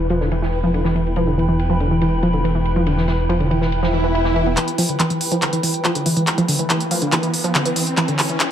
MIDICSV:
0, 0, Header, 1, 7, 480
1, 0, Start_track
1, 0, Tempo, 425532
1, 1316, Time_signature, 4, 2, 24, 8
1, 9606, End_track
2, 0, Start_track
2, 0, Title_t, "Ambient pad"
2, 0, Program_c, 0, 92
2, 0, Note_on_c, 0, 64, 76
2, 0, Note_on_c, 0, 71, 76
2, 0, Note_on_c, 0, 79, 82
2, 0, Note_on_c, 0, 83, 76
2, 9606, Note_off_c, 0, 64, 0
2, 9606, Note_off_c, 0, 71, 0
2, 9606, Note_off_c, 0, 79, 0
2, 9606, Note_off_c, 0, 83, 0
2, 9606, End_track
3, 0, Start_track
3, 0, Title_t, "Synth arpeggio sound"
3, 0, Program_c, 1, 84
3, 116, Note_on_c, 1, 53, 102
3, 176, Note_off_c, 1, 53, 0
3, 237, Note_on_c, 1, 50, 75
3, 326, Note_off_c, 1, 50, 0
3, 357, Note_on_c, 1, 52, 79
3, 446, Note_off_c, 1, 52, 0
3, 477, Note_on_c, 1, 52, 75
3, 566, Note_off_c, 1, 52, 0
3, 716, Note_on_c, 1, 53, 98
3, 776, Note_off_c, 1, 53, 0
3, 836, Note_on_c, 1, 50, 79
3, 926, Note_off_c, 1, 50, 0
3, 956, Note_on_c, 1, 52, 74
3, 1046, Note_off_c, 1, 52, 0
3, 1076, Note_on_c, 1, 52, 73
3, 1166, Note_off_c, 1, 52, 0
3, 1314, Note_on_c, 1, 53, 102
3, 1375, Note_off_c, 1, 53, 0
3, 1435, Note_on_c, 1, 50, 75
3, 1525, Note_off_c, 1, 50, 0
3, 1555, Note_on_c, 1, 52, 73
3, 1645, Note_off_c, 1, 52, 0
3, 1675, Note_on_c, 1, 52, 77
3, 1765, Note_off_c, 1, 52, 0
3, 1915, Note_on_c, 1, 53, 99
3, 1975, Note_off_c, 1, 53, 0
3, 2035, Note_on_c, 1, 50, 79
3, 2126, Note_off_c, 1, 50, 0
3, 2156, Note_on_c, 1, 52, 76
3, 2245, Note_off_c, 1, 52, 0
3, 2276, Note_on_c, 1, 52, 78
3, 2366, Note_off_c, 1, 52, 0
3, 2516, Note_on_c, 1, 53, 99
3, 2576, Note_off_c, 1, 53, 0
3, 2635, Note_on_c, 1, 50, 78
3, 2725, Note_off_c, 1, 50, 0
3, 2755, Note_on_c, 1, 52, 81
3, 2846, Note_off_c, 1, 52, 0
3, 2876, Note_on_c, 1, 52, 75
3, 2966, Note_off_c, 1, 52, 0
3, 3115, Note_on_c, 1, 53, 99
3, 3176, Note_off_c, 1, 53, 0
3, 3235, Note_on_c, 1, 50, 82
3, 3325, Note_off_c, 1, 50, 0
3, 3356, Note_on_c, 1, 52, 75
3, 3446, Note_off_c, 1, 52, 0
3, 3475, Note_on_c, 1, 52, 76
3, 3566, Note_off_c, 1, 52, 0
3, 3715, Note_on_c, 1, 53, 102
3, 3776, Note_off_c, 1, 53, 0
3, 3837, Note_on_c, 1, 50, 74
3, 3926, Note_off_c, 1, 50, 0
3, 3956, Note_on_c, 1, 52, 76
3, 4046, Note_off_c, 1, 52, 0
3, 4076, Note_on_c, 1, 52, 75
3, 4166, Note_off_c, 1, 52, 0
3, 4316, Note_on_c, 1, 53, 103
3, 4376, Note_off_c, 1, 53, 0
3, 4436, Note_on_c, 1, 52, 79
3, 4472, Note_off_c, 1, 52, 0
3, 4556, Note_on_c, 1, 52, 102
3, 4592, Note_off_c, 1, 52, 0
3, 4676, Note_on_c, 1, 64, 80
3, 4736, Note_off_c, 1, 64, 0
3, 4797, Note_on_c, 1, 52, 100
3, 4832, Note_off_c, 1, 52, 0
3, 4916, Note_on_c, 1, 52, 72
3, 4976, Note_off_c, 1, 52, 0
3, 5036, Note_on_c, 1, 59, 75
3, 5126, Note_off_c, 1, 59, 0
3, 5155, Note_on_c, 1, 52, 86
3, 5246, Note_off_c, 1, 52, 0
3, 5395, Note_on_c, 1, 53, 99
3, 5456, Note_off_c, 1, 53, 0
3, 5516, Note_on_c, 1, 50, 76
3, 5606, Note_off_c, 1, 50, 0
3, 5636, Note_on_c, 1, 52, 85
3, 5726, Note_off_c, 1, 52, 0
3, 5757, Note_on_c, 1, 52, 76
3, 5846, Note_off_c, 1, 52, 0
3, 5997, Note_on_c, 1, 53, 98
3, 6056, Note_off_c, 1, 53, 0
3, 6117, Note_on_c, 1, 50, 81
3, 6206, Note_off_c, 1, 50, 0
3, 6236, Note_on_c, 1, 52, 74
3, 6325, Note_off_c, 1, 52, 0
3, 6355, Note_on_c, 1, 52, 79
3, 6446, Note_off_c, 1, 52, 0
3, 6594, Note_on_c, 1, 53, 101
3, 6655, Note_off_c, 1, 53, 0
3, 6716, Note_on_c, 1, 50, 79
3, 6805, Note_off_c, 1, 50, 0
3, 6835, Note_on_c, 1, 52, 75
3, 6926, Note_off_c, 1, 52, 0
3, 6956, Note_on_c, 1, 52, 76
3, 7045, Note_off_c, 1, 52, 0
3, 7196, Note_on_c, 1, 53, 102
3, 7256, Note_off_c, 1, 53, 0
3, 7315, Note_on_c, 1, 50, 75
3, 7405, Note_off_c, 1, 50, 0
3, 7435, Note_on_c, 1, 52, 78
3, 7525, Note_off_c, 1, 52, 0
3, 7555, Note_on_c, 1, 52, 83
3, 7645, Note_off_c, 1, 52, 0
3, 7795, Note_on_c, 1, 53, 103
3, 7856, Note_off_c, 1, 53, 0
3, 7916, Note_on_c, 1, 50, 77
3, 8006, Note_off_c, 1, 50, 0
3, 8035, Note_on_c, 1, 52, 82
3, 8126, Note_off_c, 1, 52, 0
3, 8157, Note_on_c, 1, 52, 75
3, 8246, Note_off_c, 1, 52, 0
3, 8395, Note_on_c, 1, 53, 102
3, 8455, Note_off_c, 1, 53, 0
3, 8515, Note_on_c, 1, 50, 85
3, 8605, Note_off_c, 1, 50, 0
3, 8636, Note_on_c, 1, 52, 80
3, 8726, Note_off_c, 1, 52, 0
3, 8755, Note_on_c, 1, 52, 74
3, 8845, Note_off_c, 1, 52, 0
3, 8994, Note_on_c, 1, 52, 98
3, 9055, Note_off_c, 1, 52, 0
3, 9115, Note_on_c, 1, 50, 73
3, 9205, Note_off_c, 1, 50, 0
3, 9234, Note_on_c, 1, 52, 71
3, 9325, Note_off_c, 1, 52, 0
3, 9355, Note_on_c, 1, 52, 73
3, 9445, Note_off_c, 1, 52, 0
3, 9606, End_track
4, 0, Start_track
4, 0, Title_t, "Detuned saw bass"
4, 0, Program_c, 2, 39
4, 0, Note_on_c, 2, 28, 90
4, 5133, Note_off_c, 2, 28, 0
4, 9606, End_track
5, 0, Start_track
5, 0, Title_t, "Riser"
5, 0, Program_c, 3, 103
5, 5156, Note_on_c, 3, 60, 80
5, 9606, Note_off_c, 3, 60, 0
5, 9606, End_track
6, 0, Start_track
6, 0, Title_t, "Swell"
6, 0, Program_c, 4, 103
6, 4196, Note_on_c, 4, 60, 75
6, 5156, Note_off_c, 4, 60, 0
6, 9606, End_track
7, 0, Start_track
7, 0, Title_t, "Drums"
7, 106, Note_on_c, 9, 51, 63
7, 219, Note_off_c, 9, 51, 0
7, 234, Note_on_c, 9, 38, 38
7, 347, Note_off_c, 9, 38, 0
7, 354, Note_on_c, 9, 51, 90
7, 467, Note_off_c, 9, 51, 0
7, 482, Note_on_c, 9, 38, 49
7, 590, Note_on_c, 9, 46, 74
7, 595, Note_off_c, 9, 38, 0
7, 703, Note_off_c, 9, 46, 0
7, 836, Note_on_c, 9, 51, 77
7, 949, Note_off_c, 9, 51, 0
7, 952, Note_on_c, 9, 38, 55
7, 1065, Note_off_c, 9, 38, 0
7, 1077, Note_on_c, 9, 51, 64
7, 1190, Note_off_c, 9, 51, 0
7, 1202, Note_on_c, 9, 51, 43
7, 1307, Note_off_c, 9, 51, 0
7, 1307, Note_on_c, 9, 51, 81
7, 1420, Note_off_c, 9, 51, 0
7, 1566, Note_on_c, 9, 51, 63
7, 1678, Note_off_c, 9, 51, 0
7, 1797, Note_on_c, 9, 51, 82
7, 1910, Note_off_c, 9, 51, 0
7, 2032, Note_on_c, 9, 51, 67
7, 2144, Note_off_c, 9, 51, 0
7, 2271, Note_on_c, 9, 51, 86
7, 2384, Note_off_c, 9, 51, 0
7, 2510, Note_on_c, 9, 51, 62
7, 2623, Note_off_c, 9, 51, 0
7, 2629, Note_on_c, 9, 51, 43
7, 2742, Note_off_c, 9, 51, 0
7, 2761, Note_on_c, 9, 51, 80
7, 2873, Note_off_c, 9, 51, 0
7, 2993, Note_on_c, 9, 51, 63
7, 3106, Note_off_c, 9, 51, 0
7, 3231, Note_on_c, 9, 51, 90
7, 3344, Note_off_c, 9, 51, 0
7, 3355, Note_on_c, 9, 38, 34
7, 3468, Note_off_c, 9, 38, 0
7, 3469, Note_on_c, 9, 38, 43
7, 3472, Note_on_c, 9, 51, 72
7, 3582, Note_off_c, 9, 38, 0
7, 3585, Note_off_c, 9, 51, 0
7, 3717, Note_on_c, 9, 51, 86
7, 3830, Note_off_c, 9, 51, 0
7, 3837, Note_on_c, 9, 51, 44
7, 3950, Note_off_c, 9, 51, 0
7, 3958, Note_on_c, 9, 51, 61
7, 4071, Note_off_c, 9, 51, 0
7, 4078, Note_on_c, 9, 38, 35
7, 4190, Note_off_c, 9, 38, 0
7, 4197, Note_on_c, 9, 51, 82
7, 4310, Note_off_c, 9, 51, 0
7, 4321, Note_on_c, 9, 38, 53
7, 4434, Note_off_c, 9, 38, 0
7, 4441, Note_on_c, 9, 46, 75
7, 4554, Note_off_c, 9, 46, 0
7, 4680, Note_on_c, 9, 51, 93
7, 4792, Note_off_c, 9, 51, 0
7, 4795, Note_on_c, 9, 38, 50
7, 4908, Note_off_c, 9, 38, 0
7, 4915, Note_on_c, 9, 51, 67
7, 5027, Note_off_c, 9, 51, 0
7, 5032, Note_on_c, 9, 51, 46
7, 5145, Note_off_c, 9, 51, 0
7, 5155, Note_on_c, 9, 39, 48
7, 5155, Note_on_c, 9, 42, 78
7, 5268, Note_off_c, 9, 39, 0
7, 5268, Note_off_c, 9, 42, 0
7, 5276, Note_on_c, 9, 42, 55
7, 5389, Note_off_c, 9, 42, 0
7, 5395, Note_on_c, 9, 46, 103
7, 5508, Note_off_c, 9, 46, 0
7, 5516, Note_on_c, 9, 42, 54
7, 5629, Note_off_c, 9, 42, 0
7, 5636, Note_on_c, 9, 39, 49
7, 5636, Note_on_c, 9, 42, 81
7, 5749, Note_off_c, 9, 39, 0
7, 5749, Note_off_c, 9, 42, 0
7, 5756, Note_on_c, 9, 42, 55
7, 5869, Note_off_c, 9, 42, 0
7, 5875, Note_on_c, 9, 46, 106
7, 5988, Note_off_c, 9, 46, 0
7, 5996, Note_on_c, 9, 42, 56
7, 6108, Note_off_c, 9, 42, 0
7, 6115, Note_on_c, 9, 39, 53
7, 6115, Note_on_c, 9, 42, 83
7, 6228, Note_off_c, 9, 39, 0
7, 6228, Note_off_c, 9, 42, 0
7, 6235, Note_on_c, 9, 42, 56
7, 6348, Note_off_c, 9, 42, 0
7, 6355, Note_on_c, 9, 46, 102
7, 6467, Note_off_c, 9, 46, 0
7, 6475, Note_on_c, 9, 42, 55
7, 6588, Note_off_c, 9, 42, 0
7, 6594, Note_on_c, 9, 39, 55
7, 6594, Note_on_c, 9, 42, 52
7, 6707, Note_off_c, 9, 39, 0
7, 6707, Note_off_c, 9, 42, 0
7, 6715, Note_on_c, 9, 42, 81
7, 6828, Note_off_c, 9, 42, 0
7, 6834, Note_on_c, 9, 46, 110
7, 6947, Note_off_c, 9, 46, 0
7, 6955, Note_on_c, 9, 42, 54
7, 7068, Note_off_c, 9, 42, 0
7, 7075, Note_on_c, 9, 39, 57
7, 7075, Note_on_c, 9, 42, 81
7, 7187, Note_off_c, 9, 39, 0
7, 7187, Note_off_c, 9, 42, 0
7, 7196, Note_on_c, 9, 42, 55
7, 7309, Note_off_c, 9, 42, 0
7, 7315, Note_on_c, 9, 46, 106
7, 7428, Note_off_c, 9, 46, 0
7, 7436, Note_on_c, 9, 42, 56
7, 7549, Note_off_c, 9, 42, 0
7, 7556, Note_on_c, 9, 39, 62
7, 7556, Note_on_c, 9, 42, 79
7, 7669, Note_off_c, 9, 39, 0
7, 7669, Note_off_c, 9, 42, 0
7, 7676, Note_on_c, 9, 42, 55
7, 7788, Note_off_c, 9, 42, 0
7, 7794, Note_on_c, 9, 46, 111
7, 7907, Note_off_c, 9, 46, 0
7, 7916, Note_on_c, 9, 42, 56
7, 8029, Note_off_c, 9, 42, 0
7, 8035, Note_on_c, 9, 39, 66
7, 8035, Note_on_c, 9, 42, 84
7, 8148, Note_off_c, 9, 39, 0
7, 8148, Note_off_c, 9, 42, 0
7, 8156, Note_on_c, 9, 42, 57
7, 8269, Note_off_c, 9, 42, 0
7, 8275, Note_on_c, 9, 46, 105
7, 8388, Note_off_c, 9, 46, 0
7, 8396, Note_on_c, 9, 42, 56
7, 8509, Note_off_c, 9, 42, 0
7, 8515, Note_on_c, 9, 39, 69
7, 8515, Note_on_c, 9, 42, 56
7, 8628, Note_off_c, 9, 39, 0
7, 8628, Note_off_c, 9, 42, 0
7, 8635, Note_on_c, 9, 42, 82
7, 8748, Note_off_c, 9, 42, 0
7, 8755, Note_on_c, 9, 46, 116
7, 8867, Note_off_c, 9, 46, 0
7, 8876, Note_on_c, 9, 42, 54
7, 8988, Note_off_c, 9, 42, 0
7, 8994, Note_on_c, 9, 39, 75
7, 8994, Note_on_c, 9, 42, 79
7, 9107, Note_off_c, 9, 39, 0
7, 9107, Note_off_c, 9, 42, 0
7, 9116, Note_on_c, 9, 42, 57
7, 9229, Note_off_c, 9, 42, 0
7, 9235, Note_on_c, 9, 39, 76
7, 9235, Note_on_c, 9, 46, 110
7, 9348, Note_off_c, 9, 39, 0
7, 9348, Note_off_c, 9, 46, 0
7, 9356, Note_on_c, 9, 42, 55
7, 9468, Note_off_c, 9, 42, 0
7, 9475, Note_on_c, 9, 39, 80
7, 9475, Note_on_c, 9, 42, 81
7, 9588, Note_off_c, 9, 39, 0
7, 9588, Note_off_c, 9, 42, 0
7, 9606, End_track
0, 0, End_of_file